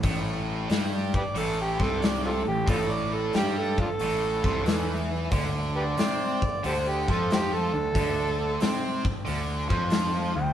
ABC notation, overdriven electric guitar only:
X:1
M:4/4
L:1/8
Q:"Swing" 1/4=91
K:Am
V:1 name="Overdriven electric guitar" clef=bass
A,,2 G, z A,, C,2 A,, | A,,2 G, z A,, C, E,2 | D,2 C z D, F,2 D, | D,2 C z D, F,2 D, |]